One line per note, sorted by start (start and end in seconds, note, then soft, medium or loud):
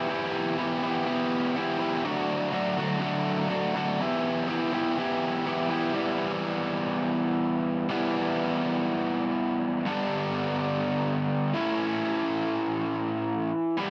0.08 0.56 E3 loud
0.08 0.57 B3 loud
0.08 0.57 E4 loud
0.08 0.57 G4 loud
0.57 0.82 E3 medium
0.57 0.82 B3 medium
0.57 0.82 E4 medium
0.57 0.83 G4 medium
0.83 1.05 E3 medium
0.83 1.06 B3 medium
0.83 1.05 E4 medium
0.83 1.06 G4 medium
1.06 1.55 E3 medium
1.06 1.55 B3 loud
1.06 1.56 E4 medium
1.06 1.56 G4 loud
1.56 1.78 E3 medium
1.56 1.78 B3 medium
1.56 1.80 E4 medium
1.56 1.80 G4 loud
1.79 2.02 E3 medium
1.79 2.03 B3 medium
1.79 2.03 E4 loud
1.79 2.04 G4 medium
2.04 2.51 D3 loud
2.04 2.52 F#3 loud
2.04 2.51 A3 loud
2.04 2.52 D4 loud
2.04 2.53 F#4 loud
2.52 2.76 D3 medium
2.52 2.78 F#3 medium
2.52 2.77 A3 medium
2.52 2.77 D4 medium
2.52 2.79 F#4 medium
2.77 2.99 D3 medium
2.77 2.98 F#3 loud
2.77 2.99 A3 medium
2.77 3.00 D4 medium
2.77 3.00 F#4 medium
3.00 3.49 D3 medium
3.00 3.49 F#3 loud
3.00 3.49 A3 medium
3.00 3.50 D4 loud
3.00 3.50 F#4 loud
3.50 3.73 D3 medium
3.50 3.74 F#3 loud
3.50 3.74 A3 medium
3.50 3.75 D4 medium
3.50 3.75 F#4 medium
3.74 3.97 D3 medium
3.74 3.98 F#3 medium
3.74 3.98 A3 medium
3.74 3.99 D4 loud
3.74 3.99 F#4 medium
4.00 4.47 E3 loud
4.00 4.47 B3 loud
4.00 4.48 E4 loud
4.00 4.48 G4 loud
4.48 4.71 E3 medium
4.48 4.73 B3 medium
4.48 4.73 E4 medium
4.48 4.73 G4 medium
4.73 4.97 E3 medium
4.73 4.97 B3 medium
4.73 4.97 E4 medium
4.73 4.98 G4 loud
4.98 5.45 E3 medium
4.98 5.45 B3 medium
4.98 5.46 E4 loud
4.98 5.45 G4 loud
5.46 5.69 E3 medium
5.46 5.69 B3 medium
5.46 5.69 E4 medium
5.46 5.70 G4 medium
5.70 5.92 E3 medium
5.70 5.93 B3 medium
5.70 5.93 E4 medium
5.70 5.94 G4 loud
5.93 7.88 E3 medium
5.93 7.89 G3 medium
5.93 7.90 B3 medium
5.93 7.89 E4 medium
7.89 9.84 E3 medium
7.89 9.84 G3 medium
7.89 9.85 B3 loud
7.89 9.85 E4 medium
9.86 11.53 G2 medium
9.86 11.55 D3 medium
9.86 11.55 G3 medium
9.86 11.56 B3 medium
9.86 11.57 D4 medium
11.54 13.50 A2 medium
11.54 13.77 E3 medium
11.54 13.51 A3 medium
11.54 13.52 C#4 medium
11.54 13.79 E4 loud
13.77 13.90 E3 medium
13.77 13.90 G3 medium
13.77 13.90 B3 medium
13.77 13.90 E4 medium